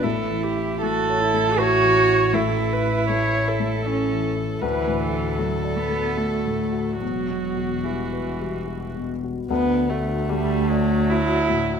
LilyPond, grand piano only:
\new Staff \with { instrumentName = "Grand piano" } { \time 3/4 \key d \major \tempo 4 = 76 \tuplet 3/2 { a,8 e8 e'8 a8 cis''8 a8 e'8 e8 e'8 } | \tuplet 3/2 { a,8 e4 a8 cis''8 a8 e'8 e8 e'8 } | \tuplet 3/2 { d,8 a,8 fis'8 a8 d''8 a8 fis'8 a,8 fis'8 } | \tuplet 3/2 { e,8 b,8 fis'8 g8 b'8 g8 fis'8 b,8 fis'8 } |
d,8 fis'8 a8 d''8 fis'8 a,8 | }